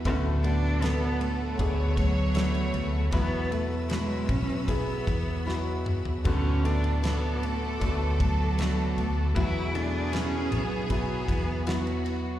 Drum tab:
CC |----------------|----------------|x---------------|----------------|
RD |x-x-x-x-x-x-xxx-|x-x-x-x-x-x-----|--xxx-x-x-x-x-x-|x-x-x-x-x-x-xxx-|
SD |----o-------o---|----o-------o---|----o-------o---|----o-------o---|
T2 |----------------|--------------o-|----------------|----------------|
FT |----------------|---------------o|----------------|----------------|
BD |o-------o-o-----|o-----o-o-o-----|o-------o-o-----|o-------o-o-----|